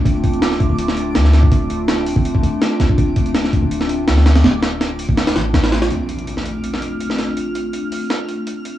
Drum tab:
HH |o-oxo-o-o-o-o-o-|o-o-o-o-o-o-o-o-|o-oxo-o-o-o-o-oo|o-o-o-o-ooo-oooo|
SD |----oo---o--ooo-|----o-------o-o-|----oo---o--oooo|o-o-o---ooo-oooo|
BD |o-o---o--------o|o------o-o-----o|o-o---o---------|-------o--------|

HH |o-oxo-o-o-o-o-o-|o-o-o-o-o-o-o-o-|
SD |-----o---o---oo-|--------o-------|
BD |----------------|----------------|